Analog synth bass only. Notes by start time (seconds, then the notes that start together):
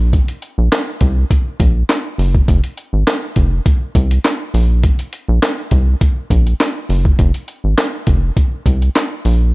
Already playing: A#1
0.58 A#1
1.01 C2
1.60 A#1
2.18 F#1
2.48 F1
2.93 G#1
3.36 F1
3.95 C2
4.54 A#1
5.29 A#1
5.71 C2
6.30 A#1
6.89 F#1
7.19 F1
7.64 G#1
8.07 F1
8.66 C2
9.25 A#1